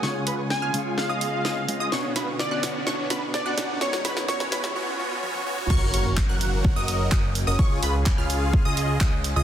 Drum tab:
CC |----------------|----------------|----------------|x---------------|
HH |--o---o---o---o-|--o---o---o---o-|--o---o---------|--o---o---o---o-|
CP |----------------|----------------|----------------|----x-------x---|
SD |o---o---o---o---|o-o-o-o-o-o-o-o-|oooooooo--------|----------------|
T1 |----------------|----------------|------------oo--|----------------|
T2 |----------------|----------------|---------------o|----------------|
BD |----------------|----------------|----------------|o---o---o---o---|

CC |----------------|
HH |--o---o---o---o-|
CP |----x-------x---|
SD |----------------|
T1 |----------------|
T2 |----------------|
BD |o---o---o---o---|